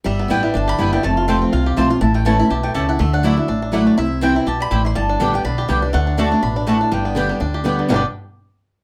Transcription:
0.04 G1 G3 E5
0.19 B3
0.28 A1 G3 B3 D4 E4 B4 G5
0.43 G3 B3 E4
0.54 G1 D3 D4 A5
0.68 G4 B5
0.78 F#1 G3 B3 E4 B4 G5
0.92 D3 B3 E4 G5
1.03 F1 F2 A3 A5
1.17 F4
1.28 F3 A3 C4 F4 C5 G5 A5
1.42 C4
1.53 C2 C3 F4 F5
1.66 G4
1.76 B1 F3 A3 C4 F4 C5 A5
1.90 C4 F4 C6
2.01 A1 A2 E4 A5
2.14 A3 G5
2.25 E3 A3 C#4 E4 C#5 A5
2.39 C#4 E4 B5
2.50 B1 B2 G4 A5
2.63 A3 G5
2.74 C#2 C#3 A3 E4 G4 C#5 A5
2.89 E4 F#5
2.99 D2 D3 A3 E5
3.13 D4 F#5
3.23 F#3 A3 E4 F#4 D5 E5 F#5
3.37 D4 E4 F#4
3.48 A1 A2 D4
3.62 D4
3.72 F#3 A3 E4 F#4 D5 F#5
3.87 D4
3.97 C2 C3 E4 E5
4.21 E3 G3 C4 E4 C5 G5
4.34 C4 E4
4.46 B1 B2 G4 A5
4.60 G3 B5
4.71 A1 A2 C4 E4 G4 C5 G5
4.85 E4 C6
4.95 G1 G2 G3 A5
5.09 D4
5.20 A1 D3 G3 B3 G4 D5 G5
5.33 B3 G4 G5
5.45 B1 D3 D4 B5
5.58 G4
5.68 C2 D3 G3 B3 G4 D5 G5
5.82 B3 D4 G4
5.93 D2 D3 A3 F#5
6.07 D4
6.17 D3 A3 D4 F#4 D5 A5
6.31 D4 F#4
6.42 A1 B2 D4 B5
6.56 D4
6.67 A2 A3 F#4 D5 A5
6.81 D4
6.92 G1 G2 G3 G5
7.05 B3
7.15 D3 G3 B3 D4 G4 D5 G5
7.29 G3 B3 G4
7.40 D2 D3 D4
7.54 G4
7.64 D3 G3 B3 G4 D5 G5
7.79 D3
7.88 G1 G2 B2 D3 G3 B3 G4 D5 G5
7.94 D4 G4

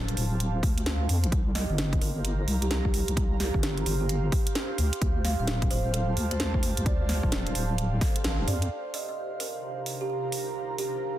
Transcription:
Already playing: D1 G4 C5 F5 A5
0.08 closed hi-hat
0.17 D1, open hi-hat
0.40 closed hi-hat
0.63 D2, kick, open hi-hat
0.78 closed hi-hat
0.86 snare, closed hi-hat
1.09 F2, open hi-hat
1.23 A1, closed hi-hat
1.32 C2 G4, kick, closed hi-hat
1.54 C5 D#5, snare, open hi-hat
1.69 G1 D#5 F5
1.78 snare, closed hi-hat
1.89 A#5, kick, closed hi-hat
2.01 G1 A#4, open hi-hat
2.25 closed hi-hat
2.47 C2, open hi-hat
2.62 G4, closed hi-hat
2.71 G4, snare, closed hi-hat
2.85 kick
2.94 open hi-hat
3.08 C2, closed hi-hat
3.17 C2, kick, closed hi-hat
3.40 G4, snare, open hi-hat
3.54 G1, kick
3.63 snare, closed hi-hat
3.78 closed hi-hat
3.86 G1 G4, open hi-hat
4.00 G4
4.09 closed hi-hat
4.32 kick, open hi-hat
4.47 closed hi-hat
4.55 snare, closed hi-hat
4.78 D2, open hi-hat
4.93 closed hi-hat
5.01 D2, kick, closed hi-hat
5.25 F5, snare, open hi-hat
5.39 D1 F5
5.47 snare, closed hi-hat
5.62 kick, closed hi-hat
5.68 D1 C5 A5, open hi-hat
5.94 A4, closed hi-hat
6.17 D2, open hi-hat
6.31 C5, closed hi-hat
6.40 snare, closed hi-hat
6.54 kick
6.63 open hi-hat
6.77 D2, closed hi-hat
6.86 D2 D5, kick, closed hi-hat
7.09 snare, open hi-hat
7.23 D1, kick
7.32 snare, closed hi-hat
7.47 closed hi-hat
7.55 D1, open hi-hat
7.78 closed hi-hat
8.01 A4, kick, snare, open hi-hat
8.16 A4, closed hi-hat
8.24 A1, snare, closed hi-hat
8.39 D1
8.48 F2 D5, open hi-hat
8.62 closed hi-hat
8.71 C3 D4 D#4 F4 G4 A#4
8.94 D#5, open hi-hat
9.09 D#5
9.40 A#4 A#5, open hi-hat
9.86 open hi-hat
10.01 G4
10.10 G4
10.32 open hi-hat
10.78 G4, open hi-hat

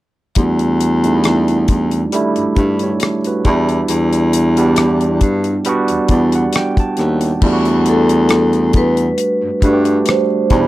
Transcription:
0.35 E2 G3 A3 D4 F#4, kick, closed hi-hat
0.59 closed hi-hat
0.81 closed hi-hat
1.04 G3 A3 D4 D#4, closed hi-hat
1.14 E4
1.24 cross-stick, closed hi-hat
1.48 closed hi-hat
1.68 E2, kick, closed hi-hat
1.91 closed hi-hat
2.12 G3 A3 D4 E4, cross-stick, closed hi-hat
2.36 G2, closed hi-hat
2.56 G2 E4 A4, kick, closed hi-hat
2.79 C#5, closed hi-hat
2.84 G4
3.00 cross-stick, closed hi-hat
3.24 F#4 B4, closed hi-hat
3.45 E2 G3 B3 D4, kick, closed hi-hat
3.49 E4
3.69 closed hi-hat
3.88 E2, closed hi-hat
4.13 closed hi-hat
4.33 closed hi-hat
4.57 G3 B3 D4 G4, closed hi-hat
4.76 cross-stick, closed hi-hat
5.01 closed hi-hat
5.21 G2, kick, closed hi-hat
5.44 closed hi-hat
5.65 G3 B3 D4, closed hi-hat
5.69 F#4
5.88 E2, closed hi-hat
6.08 E2 D5, kick, closed hi-hat
6.32 F#5, closed hi-hat
6.53 G5, cross-stick, closed hi-hat
6.77 A5, kick, closed hi-hat
6.97 D#2, cross-stick, closed hi-hat
7.21 closed hi-hat
7.42 E2 G3 A3 D4, kick, crash
7.46 F4
7.53 F#4
7.65 closed hi-hat
7.86 A4, closed hi-hat
8.09 closed hi-hat
8.29 cross-stick, closed hi-hat
8.53 closed hi-hat
8.73 E2 B4, kick, closed hi-hat
8.97 closed hi-hat
9.18 closed hi-hat
9.43 G2
9.62 G2 G3 A3 D4, kick, closed hi-hat
9.66 F#4
9.73 G4
9.85 closed hi-hat
10.06 C5, cross-stick, closed hi-hat
10.50 E2 B2 G3 D4, kick, cross-stick, closed hi-hat
10.54 D#4
10.61 E4

